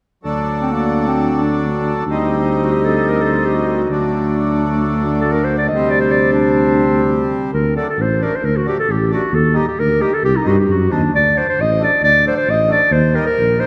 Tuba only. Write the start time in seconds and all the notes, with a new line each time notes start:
0.25 D2
2.07 D2
3.90 D2
5.72 D2
7.54 D2
7.98 A1
8.43 D2
8.88 A1
9.32 D#2
9.79 D2
10.23 C2
10.47 G2
10.69 F#2
10.91 D#2
11.13 D2
11.58 A1
12.02 D2
12.47 A1
12.91 D#2
13.38 A#1